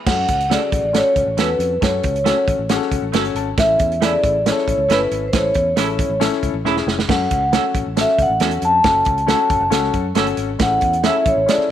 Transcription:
0.06 F#2 C#4 F#4 A4 F#5, kick, snare, crash
0.28 C#2, kick, closed hi-hat
0.40 closed hi-hat
0.50 C#3 A3 C#4 F#4 A4 D5, snare, closed hi-hat
0.72 A1, kick, closed hi-hat
0.83 A1
0.93 C#4 F#4 A4 C#5, snare, closed hi-hat
1.16 C#2, kick, closed hi-hat
1.26 A1
1.37 E2 A3 C#4 F#4 A4 B4, snare, closed hi-hat
1.59 F2, closed hi-hat
1.81 F#2 C#4 F#4 A4 C#5, kick, snare, closed hi-hat
2.03 C#2, kick, closed hi-hat
2.16 closed hi-hat
2.24 A3 C#4 F#4 A4, snare, closed hi-hat
2.48 A1, kick, closed hi-hat
2.59 A1
2.69 C#4 F#4 G#4, snare, closed hi-hat
2.76 A4
2.82 snare
2.91 C#2, kick, closed hi-hat
3.02 A1
3.12 G1 A3 C#4 F#4 A4 F#5, snare, closed hi-hat
3.25 closed hi-hat
3.35 G#1 A5, closed hi-hat
3.58 A1 C#4 E4 A4 E5, kick, snare, closed hi-hat
3.79 E2, kick, closed hi-hat
3.92 closed hi-hat
4.01 C#3 A3 C#4 E4 A4 D5, snare, closed hi-hat
4.24 A1, kick, closed hi-hat
4.46 C#4 E4 G#4 C#5, snare, closed hi-hat
4.52 A4
4.58 snare
4.67 A1, kick, closed hi-hat
4.77 C#2
4.88 G1 A3 C#4 E4 A4, snare, closed hi-hat
4.93 B4
5.11 G#1, closed hi-hat
5.28 C5
5.33 A1 C#4 E4 A4 C#5, kick, snare, closed hi-hat
5.54 E2, kick, closed hi-hat
5.76 A1 A3 C#4 E4 G#4 A4, snare, closed hi-hat
5.84 A4
5.99 kick, closed hi-hat
6.10 A1
6.20 C#4 E4 A4, snare, closed hi-hat
6.33 snare
6.43 C#2, kick, closed hi-hat
6.54 A1
6.64 E1 A3 C#4 E4 G#4 A4, snare
6.77 snare
6.87 F1, snare
6.99 snare
7.08 F#2 C#4 F#4 A4 F#5, kick, snare, splash
7.31 C#2, kick, closed hi-hat
7.52 A3 C#4 F#4 A4, snare, closed hi-hat
7.74 A1, kick, closed hi-hat
7.86 A1
7.96 C#4 F#4 A4, snare, closed hi-hat
8.01 E5
8.08 snare
8.18 C#2, kick, closed hi-hat
8.22 F#5
8.30 A1
8.40 E2 A3 C#4 F#4 A4, snare, closed hi-hat
8.51 closed hi-hat
8.62 F2 A5, closed hi-hat
8.84 F#1 C#4 F#4 A4, kick, snare, closed hi-hat
9.05 C#2, kick, closed hi-hat
9.18 closed hi-hat
9.27 A3 C#4 F#4 A4, snare, closed hi-hat
9.50 F#1, kick, closed hi-hat
9.60 F#1
9.70 C#2 C#4 F#4 A4, snare, closed hi-hat
9.83 snare
9.93 F#2, kick, closed hi-hat
10.15 G1 A3 C#4 F#4 A4, snare, closed hi-hat
10.27 closed hi-hat
10.37 G#1, closed hi-hat
10.59 A1 C#4 E4 G#4 F#5, kick, snare, closed hi-hat
10.65 A4
10.81 E2, kick, closed hi-hat
10.93 closed hi-hat
11.03 A3 C#4 E4 G#4 A4 E5, snare, closed hi-hat
11.09 A4
11.26 A1 C#5, kick, closed hi-hat
11.36 A1
11.46 C#4 E4 G#4 D5, snare, closed hi-hat
11.53 A4
11.58 muted fingered electric bass stroke, snare

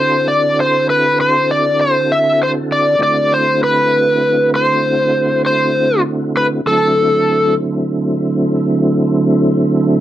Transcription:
Already playing: D3 C4 E4 F#4 A4 C5
0.28 D5
0.60 C5
0.90 B4
1.21 C5
1.51 D5
1.81 C5
2.12 E5
2.43 C5
2.72 D5
2.99 D3 A3 C4 E4 F#4
3.03 D5
3.34 C5
3.64 B4
4.56 C5
5.46 C5
6.37 B4
6.65 D3 F#3 A3 C4 E4 A4

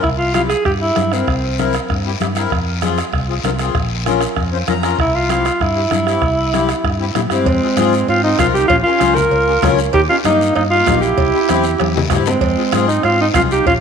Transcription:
0.03 C2 E4, bombo low, bombo rim, high conga, long guiro
0.18 F4
0.34 C4 E4 F4 G4, bombo rim, high conga, short guiro
0.49 G#4, bombo rim, short guiro
0.65 G2 G4, bombo low, bombo rim, high conga, long guiro
0.81 C4 E4 G4
0.96 G2 C4 E4 G4, bombo rim, high conga, short guiro
1.12 C4 E4 A#4, bombo rim, short guiro
1.28 C2, bombo low, bombo rim, high conga, long guiro
1.58 C4 E4 A#4, bombo rim, high conga, short guiro
1.73 bombo rim, short guiro
1.88 G2, bombo low, bombo rim, high conga, long guiro
2.06 C4 E4 G4
2.20 G2 C4 E4 G4, bombo rim, high conga, short guiro
2.35 C4 E4 A#4, bombo rim, short guiro
2.50 F2, bombo low, bombo rim, high conga, long guiro
2.81 C4 F4 G#4, bombo rim, high conga, short guiro
2.98 bombo rim, short guiro
3.13 C2, bombo low, bombo rim, high conga, long guiro
3.29 C4 F4 G#4
3.44 C2 C4 F4 A#4, bombo rim, high conga, short guiro
3.59 C4 F4 G#4, bombo rim, short guiro
3.75 A#1, bombo low, bombo rim, high conga, long guiro
4.06 C#4 F4 A#4, bombo rim, high conga, short guiro
4.21 bombo rim, short guiro
4.37 F2, bombo low, bombo rim, high conga, long guiro
4.52 C#4 F4 C5
4.67 F2 C#4 F4 A#4 A#5, bombo rim, high conga, short guiro
4.83 C#4 F4 A#4, bombo rim, short guiro
4.99 C2 E4, bombo low, bombo rim, high conga, long guiro
5.15 F4
5.29 C4 E4 F4 G4, bombo rim, high conga, short guiro
5.45 bombo rim, short guiro
5.60 G2 E4, bombo low, bombo rim, high conga, long guiro
5.75 C4 E4 G4
5.91 G2 C4 E4 A#4, bombo rim, high conga, short guiro
6.06 C4 E4 G4, bombo rim, short guiro
6.22 C2, bombo low, bombo rim, high conga, long guiro
6.53 C4 E4 G4, bombo rim, high conga, short guiro
6.69 bombo rim, short guiro
6.84 G2, bombo low, bombo rim, high conga, long guiro
7.00 C4 E4 G4
7.15 A#2 C4 E4 G4, bombo rim, high conga, short guiro
7.30 G2 G#3 C4 E4 G4, bombo rim, short guiro
7.46 F2, bombo low, cowbell, high conga, long guiro
7.61 C4 F4 G#4
7.77 G#2 C4 F4 G#4, bombo rim, cowbell, high conga, short guiro
7.93 short guiro
8.08 G#2 C4 F4, cowbell, high conga, long guiro
8.24 C4 D#4 F4 A#4
8.38 C2 C4 F4 A#4, bombo low, bombo rim, cowbell, high conga, short guiro
8.54 D#4 G4, short guiro
8.68 A#1 C#4 F4, bombo low, cowbell, high conga, long guiro
8.83 C#4 F4 A#4
9.00 C#2 C#4 F4 C5, bombo rim, cowbell, high conga, short guiro
9.15 F4 A#4, low conga, short guiro
9.31 C#2, cowbell, high conga, long guiro
9.47 C#4 F4 G4
9.62 C#2 C#4 F4 C#5, bombo low, bombo rim, cowbell, high conga, low conga, low timbale, short guiro
9.79 short guiro
9.93 D#2 D#4 G4, bombo low, cowbell, high conga, long guiro
10.09 A#3 C#4 D#4 F4 G4
10.24 G2 A#3 D#4 G4, bombo rim, cowbell, high conga, short guiro
10.41 short guiro
10.55 G2 A#3 D#4, bombo rim, cowbell, high conga, long guiro
10.71 A#3 D#4 F4 G4
10.86 A#1 A#3 D#4 G4, bombo low, bombo rim, cowbell, high conga, low timbale, short guiro
11.01 E4 G4, short guiro
11.17 C2, bombo low, cowbell, high conga, long guiro
11.34 C4 E4 G4
11.49 E2 C4 E4 G4, bombo rim, cowbell, high conga, short guiro
11.64 short guiro
11.78 E2, bombo rim, cowbell, high conga, long guiro
11.95 C4 E4 G4, low conga
12.10 G2 C4 E4 G4, bombo low, bombo rim, cowbell, low conga, low timbale, short guiro
12.25 G#3 C4, low conga, short guiro
12.41 F2, bombo low, cowbell, high conga, long guiro
12.57 C4 F4 G#4
12.72 G#2 C4 F4 G#4, bombo rim, cowbell, high conga, short guiro
12.88 C4 D#4, short guiro
13.03 G#2 C4 F4, bombo rim, cowbell, high conga, long guiro
13.20 C4 D#4 F4 G#4
13.34 C2 C4 F4 G#4, bombo low, bombo rim, cowbell, high conga, low timbale, short guiro
13.51 D#4 G4, short guiro
13.66 A#1 C#4 F4, bombo low, cowbell, high conga, long guiro

